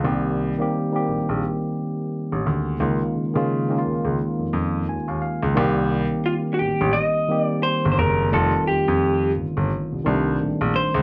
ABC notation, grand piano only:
X:1
M:4/4
L:1/16
Q:"Swing 16ths" 1/4=87
K:Cdor
V:1 name="Grand piano" clef=bass
C,,3 z3 B,,, B,,, z4 z A,,, D,,2 | _D,, z _D, D,3 D,, D,, z F,, F,,2 E,, E,, z D,, | C,,3 z3 A,,, A,,, z4 z G,,, ^F,,,2 | F,,, z F,, F,,3 G,,, G,,, z C,, C,,2 B,,, B,,, z _D,, |]